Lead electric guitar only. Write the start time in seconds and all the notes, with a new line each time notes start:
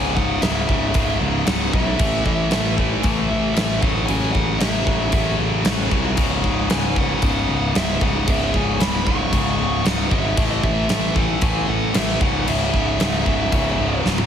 Already playing: G#5
0.15 F#5
0.42 E5
1.47 F#5
1.73 E5
2.25 E5
3.02 G#5
3.29 E5
3.55 E5
3.81 F#5
4.06 G#5
4.32 F#5
4.59 E5
6.72 G#5
6.98 F#5
7.77 E5
8.03 F#5
8.29 E5
8.56 G#5
8.80 B5
9.07 C#6
9.85 F#5
10.12 E5
10.48 D#5
10.63 E5
11.15 F#5
11.43 G#5
11.69 F#5
11.95 E5
12.21 F#5
12.48 E5